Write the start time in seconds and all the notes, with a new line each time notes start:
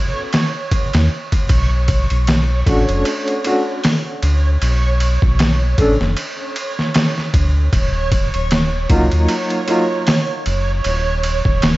Already playing: C#5
0.33 snare, ride
0.71 kick, ride
0.93 E2, snare, ride
1.32 kick, ride
1.49 B1 C#5, kick, ride
1.88 kick, ride
2.10 B1, ride
2.27 snare, ride
2.66 A1 A3 C#4 D4 F#4, kick, ride
2.89 F#1, ride
3.05 ride
3.28 ride
3.44 A3 C#4 D4 F#4, ride
3.84 snare, open hi-hat
4.23 D2, ride
4.62 B1, ride
5.00 ride
5.22 B1, kick
5.39 snare, ride
5.78 A1 A3 C#4 D4 A4, kick, ride
6.01 F#1, snare
6.17 ride
6.56 ride
6.79 snare
6.94 snare, ride
7.18 snare
7.34 D2, kick, ride
7.73 D#1, kick, ride
8.12 kick, ride
8.34 D#1, ride
8.51 snare, ride
8.89 C#2 F#3 A#3 D#4 F4, kick, ride
9.11 D#2, ride
9.28 ride
9.50 ride
9.68 F#3 A#3 D#4 F4, ride
10.07 snare, open hi-hat
10.46 F#1, ride
10.84 D#1, ride
11.23 ride
11.45 D#1, kick
11.62 snare, ride